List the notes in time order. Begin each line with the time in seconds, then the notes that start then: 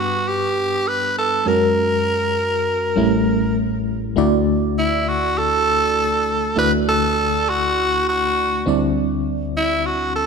Already playing: G2 G3 B3 D4 B4
0.00 F#4
0.28 G4
0.88 B4
1.18 A4
1.45 F#2 G#3 C#4 F#4 A#4
2.96 A1 A2 G3 A3 C#4 E4
4.16 D2 D3 A3 D4 E4 F#4 D5
4.78 E4
5.08 F#4
5.38 A4
6.56 D2 D3 A3 D4 E4 F#4 B4 D5
6.88 A4
7.49 F#4
8.09 F#4
8.66 D2 D3 G3 C4 D4 E4 D5
9.57 E4
9.86 F#4
10.16 A4